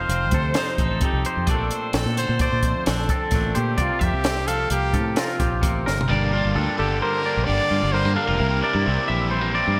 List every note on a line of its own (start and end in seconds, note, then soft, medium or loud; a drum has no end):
0.00 1.01 F2 medium
0.00 2.18 F3 medium
0.00 0.10 C4 medium
0.00 0.56 D#4 medium
0.00 1.03 C5 loud
0.00 0.34 F5 medium
0.09 0.32 F1 medium
0.09 1.03 C4 medium
0.09 closed hi-hat medium
0.31 0.54 D2 medium
0.31 1.46 C3 medium
0.31 0.57 A4 medium
0.31 kick medium
0.31 closed hi-hat medium
0.54 0.78 D#4 medium
0.54 0.81 C5 medium
0.54 snare loud
0.54 closed hi-hat medium
0.78 1.00 A1 medium
0.78 1.02 D#4 medium
0.78 1.26 A4 medium
0.78 kick medium
0.78 closed hi-hat medium
1.01 1.46 F2 medium
1.01 1.49 C4 medium
1.01 1.47 D#4 medium
1.01 1.52 G4 medium
1.01 kick loud
1.01 closed hi-hat medium
1.13 1.24 C2 medium
1.25 1.47 C5 medium
1.25 closed hi-hat medium
1.37 1.47 F2 medium
1.47 1.69 A#1 medium
1.47 2.18 A#2 medium
1.47 2.41 A3 medium
1.47 1.95 C4 medium
1.47 2.86 D4 medium
1.47 1.91 A4 medium
1.47 1.71 D5 medium
1.47 kick medium
1.47 closed hi-hat medium
1.71 1.94 C5 medium
1.71 closed hi-hat medium
1.93 2.05 A#1 loud
1.93 3.10 C4 medium
1.93 2.40 A4 medium
1.93 snare loud
1.93 closed hi-hat medium
2.06 2.27 A#2 medium
2.17 3.80 D3 medium
2.17 2.39 C5 loud
2.17 closed hi-hat medium
2.29 2.50 A#2 medium
2.39 3.33 A3 medium
2.39 2.84 C5 loud
2.39 2.63 D5 medium
2.39 kick loud
2.39 closed hi-hat medium
2.52 2.73 A#2 medium
2.63 3.33 F2 medium
2.63 3.10 C5 medium
2.63 kick medium
2.63 closed hi-hat medium
2.86 3.08 A#1 medium
2.86 3.33 D4 medium
2.86 3.29 A4 medium
2.86 snare loud
2.86 closed hi-hat medium
3.09 3.33 C4 medium
3.09 3.56 A4 medium
3.09 kick medium
3.09 closed hi-hat medium
3.31 3.54 A1 medium
3.31 3.76 A#2 medium
3.31 3.77 A3 medium
3.31 3.77 C4 medium
3.31 kick loud
3.31 snare soft
3.31 closed hi-hat medium
3.35 3.80 D4 medium
3.55 3.78 A#2 loud
3.55 3.83 G4 medium
3.55 3.77 C5 medium
3.55 closed hi-hat medium
3.77 3.89 C2 loud
3.77 4.47 C3 medium
3.77 4.70 A#3 medium
3.77 4.25 C4 medium
3.77 3.99 D5 medium
3.77 kick medium
3.77 closed hi-hat medium
3.82 4.05 F4 medium
3.99 4.12 F2 medium
3.99 4.47 E5 medium
3.99 kick medium
3.99 closed hi-hat medium
4.04 4.49 G4 loud
4.13 4.67 C2 medium
4.24 5.17 C4 medium
4.24 snare medium
4.24 closed hi-hat medium
4.47 6.07 F3 medium
4.47 4.71 A4 loud
4.47 4.94 F5 medium
4.47 closed hi-hat medium
4.70 4.95 C2 medium
4.70 5.61 A#3 medium
4.70 5.19 G4 loud
4.70 closed hi-hat medium
4.93 5.15 A2 loud
4.93 5.60 C3 medium
4.93 5.17 A4 medium
4.93 kick medium
4.93 closed hi-hat medium
5.16 5.39 C4 medium
5.16 5.87 F4 medium
5.16 5.39 A#4 medium
5.16 snare loud
5.16 closed hi-hat medium
5.40 5.61 A#1 medium
5.40 5.62 C4 medium
5.40 5.86 G4 medium
5.40 kick medium
5.40 closed hi-hat medium
5.62 5.84 A1 medium
5.62 6.06 C3 medium
5.62 6.06 A#3 medium
5.62 6.06 C4 soft
5.62 kick loud
5.62 closed hi-hat medium
5.86 6.08 G1 medium
5.86 6.09 A#4 medium
5.86 snare soft
6.01 floor tom medium
6.08 6.42 G1 loud
6.08 6.54 G2 medium
6.08 7.93 G2 medium
6.08 6.54 D3 loud
6.08 6.35 G3 loud
6.08 6.34 A#3 loud
6.08 7.03 A#3 medium
6.08 6.32 D4 loud
6.08 6.32 G4 loud
6.08 6.55 D5 medium
6.33 6.56 G3 medium
6.33 6.57 A#3 medium
6.33 6.56 D4 medium
6.33 7.70 F4 medium
6.33 6.58 G4 medium
6.45 6.55 G1 medium
6.55 6.67 D2 medium
6.55 7.01 G2 medium
6.55 7.01 D3 loud
6.55 6.80 G3 loud
6.55 6.79 A#3 loud
6.55 7.24 D4 medium
6.55 6.78 D4 loud
6.55 6.77 G4 loud
6.55 6.79 A4 medium
6.77 7.00 G1 medium
6.77 7.45 D3 medium
6.77 7.25 G3 medium
6.77 7.23 A#3 medium
6.77 7.23 D4 medium
6.77 7.22 G4 medium
6.77 7.02 G4 medium
6.77 7.00 A4 medium
7.01 7.94 A#3 medium
7.01 7.46 A#4 loud
7.01 7.25 C5 medium
7.23 7.45 G3 soft
7.23 7.45 A#3 medium
7.23 7.46 D4 medium
7.23 8.15 D4 medium
7.23 7.48 G4 medium
7.23 7.71 D5 medium
7.37 7.47 A#1 medium
7.44 8.36 D3 medium
7.44 7.94 G3 medium
7.44 7.93 A#3 medium
7.44 7.94 D4 medium
7.44 7.95 G4 medium
7.44 7.94 D5 loud
7.49 7.59 G1 loud
7.71 7.81 G2 medium
7.71 8.16 F4 medium
7.83 8.04 G1 medium
7.92 8.38 G2 loud
7.92 8.37 G2 medium
7.92 8.38 D3 medium
7.92 8.19 G3 loud
7.92 8.05 G3 medium
7.92 8.17 A#3 loud
7.92 8.16 D4 loud
7.92 8.16 G4 loud
7.92 8.17 A#4 medium
7.92 8.15 C5 loud
8.05 8.16 G2 medium
8.05 8.38 A#3 medium
8.15 8.39 A#3 medium
8.15 8.27 D4 medium
8.15 8.39 D4 medium
8.15 8.40 G4 medium
8.15 9.04 A#4 medium
8.15 8.62 F5 medium
8.20 8.38 G3 medium
8.27 8.39 F1 medium
8.27 8.39 F4 medium
8.38 8.61 C2 loud
8.38 8.86 C3 loud
8.38 9.08 C3 medium
8.38 8.86 G3 loud
8.38 9.29 A#3 medium
8.38 8.64 A#3 loud
8.38 8.63 E4 loud
8.38 8.62 G4 loud
8.62 8.86 A#3 medium
8.62 8.73 D4 medium
8.62 8.87 E4 medium
8.62 8.88 G4 medium
8.62 9.08 D5 medium
8.73 8.85 G2 medium
8.73 9.80 E4 medium
8.85 8.97 C2 loud
8.85 9.61 C3 loud
8.85 9.78 G3 loud
8.85 9.11 A#3 loud
8.85 9.53 C4 medium
8.85 9.10 E4 loud
8.85 9.09 G4 loud
9.08 9.62 A#1 medium
9.08 9.80 E3 medium
9.08 9.56 E4 medium
9.08 9.54 G4 medium
9.08 9.31 E5 medium
9.12 9.57 A#3 medium
9.30 9.41 G3 medium
9.30 9.54 C5 medium
9.41 9.80 A#3 medium
9.53 9.80 C4 medium
9.53 9.79 E4 medium
9.53 9.80 G4 medium
9.53 9.80 D5 medium
9.58 9.78 A#3 medium
9.68 9.77 G2 medium
9.77 9.80 G2 medium